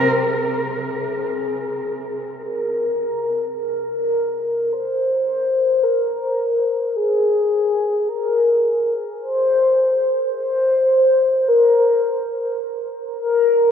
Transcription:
0, 0, Header, 1, 2, 480
1, 0, Start_track
1, 0, Tempo, 500000
1, 13166, End_track
2, 0, Start_track
2, 0, Title_t, "Soft synth lead"
2, 0, Program_c, 0, 80
2, 98, Note_on_c, 0, 68, 98
2, 2327, Note_on_c, 0, 70, 112
2, 2341, Note_off_c, 0, 68, 0
2, 3406, Note_off_c, 0, 70, 0
2, 3421, Note_on_c, 0, 70, 106
2, 4535, Note_on_c, 0, 72, 127
2, 4549, Note_off_c, 0, 70, 0
2, 5598, Note_on_c, 0, 70, 96
2, 5613, Note_off_c, 0, 72, 0
2, 6682, Note_on_c, 0, 68, 106
2, 6696, Note_off_c, 0, 70, 0
2, 7764, Note_on_c, 0, 70, 112
2, 7778, Note_off_c, 0, 68, 0
2, 8572, Note_off_c, 0, 70, 0
2, 8821, Note_on_c, 0, 72, 107
2, 9882, Note_off_c, 0, 72, 0
2, 9934, Note_on_c, 0, 72, 103
2, 11023, Note_on_c, 0, 70, 97
2, 11037, Note_off_c, 0, 72, 0
2, 12120, Note_off_c, 0, 70, 0
2, 12642, Note_on_c, 0, 70, 94
2, 13166, Note_off_c, 0, 70, 0
2, 13166, End_track
0, 0, End_of_file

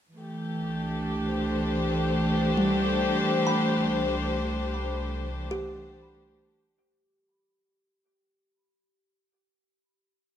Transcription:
0, 0, Header, 1, 4, 480
1, 0, Start_track
1, 0, Key_signature, 0, "major"
1, 0, Tempo, 845070
1, 47, Time_signature, 4, 2, 24, 8
1, 5888, End_track
2, 0, Start_track
2, 0, Title_t, "Kalimba"
2, 0, Program_c, 0, 108
2, 1462, Note_on_c, 0, 55, 46
2, 1969, Note_on_c, 0, 83, 43
2, 3009, Note_off_c, 0, 55, 0
2, 3130, Note_on_c, 0, 67, 69
2, 3516, Note_off_c, 0, 83, 0
2, 4677, Note_off_c, 0, 67, 0
2, 5888, End_track
3, 0, Start_track
3, 0, Title_t, "String section"
3, 0, Program_c, 1, 48
3, 52, Note_on_c, 1, 52, 61
3, 93, Note_on_c, 1, 57, 68
3, 127, Note_on_c, 1, 67, 57
3, 352, Note_on_c, 1, 62, 59
3, 727, Note_on_c, 1, 72, 63
3, 3882, Note_off_c, 1, 72, 0
3, 3884, Note_off_c, 1, 57, 0
3, 3884, Note_off_c, 1, 67, 0
3, 3887, Note_off_c, 1, 62, 0
3, 3889, Note_off_c, 1, 52, 0
3, 5888, End_track
4, 0, Start_track
4, 0, Title_t, "Synth drone"
4, 0, Program_c, 2, 95
4, 47, Note_on_c, 2, 36, 77
4, 1943, Note_off_c, 2, 36, 0
4, 1966, Note_on_c, 2, 36, 72
4, 3862, Note_off_c, 2, 36, 0
4, 5888, End_track
0, 0, End_of_file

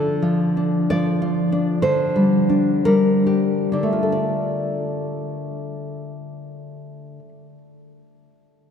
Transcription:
0, 0, Header, 1, 2, 480
1, 0, Start_track
1, 0, Key_signature, -1, "minor"
1, 0, Tempo, 995025
1, 432, Tempo, 921659
1, 911, Time_signature, 2, 2, 24, 8
1, 912, Tempo, 1045296
1, 1392, Tempo, 1257862
1, 3622, End_track
2, 0, Start_track
2, 0, Title_t, "Nylon-string guitar"
2, 0, Program_c, 0, 24
2, 0, Note_on_c, 0, 50, 48
2, 0, Note_on_c, 0, 69, 59
2, 108, Note_on_c, 0, 53, 38
2, 275, Note_on_c, 0, 62, 38
2, 411, Note_off_c, 0, 69, 0
2, 435, Note_off_c, 0, 53, 0
2, 435, Note_on_c, 0, 74, 80
2, 441, Note_on_c, 0, 53, 46
2, 600, Note_on_c, 0, 65, 43
2, 752, Note_off_c, 0, 62, 0
2, 759, Note_on_c, 0, 62, 47
2, 891, Note_off_c, 0, 50, 0
2, 894, Note_off_c, 0, 74, 0
2, 914, Note_on_c, 0, 72, 74
2, 915, Note_off_c, 0, 65, 0
2, 916, Note_off_c, 0, 53, 0
2, 916, Note_off_c, 0, 62, 0
2, 918, Note_on_c, 0, 50, 53
2, 1068, Note_on_c, 0, 55, 41
2, 1223, Note_on_c, 0, 62, 40
2, 1374, Note_off_c, 0, 72, 0
2, 1387, Note_on_c, 0, 70, 72
2, 1388, Note_off_c, 0, 55, 0
2, 1393, Note_on_c, 0, 55, 44
2, 1544, Note_off_c, 0, 62, 0
2, 1546, Note_on_c, 0, 67, 39
2, 1718, Note_off_c, 0, 50, 0
2, 1719, Note_on_c, 0, 62, 31
2, 1724, Note_on_c, 0, 50, 39
2, 1761, Note_on_c, 0, 57, 32
2, 1796, Note_off_c, 0, 55, 0
2, 1798, Note_on_c, 0, 65, 28
2, 1836, Note_off_c, 0, 67, 0
2, 1837, Note_on_c, 0, 69, 31
2, 1862, Note_off_c, 0, 70, 0
2, 1873, Note_on_c, 0, 74, 38
2, 1881, Note_off_c, 0, 62, 0
2, 3043, Note_off_c, 0, 50, 0
2, 3080, Note_off_c, 0, 57, 0
2, 3116, Note_off_c, 0, 65, 0
2, 3156, Note_off_c, 0, 69, 0
2, 3192, Note_off_c, 0, 74, 0
2, 3622, End_track
0, 0, End_of_file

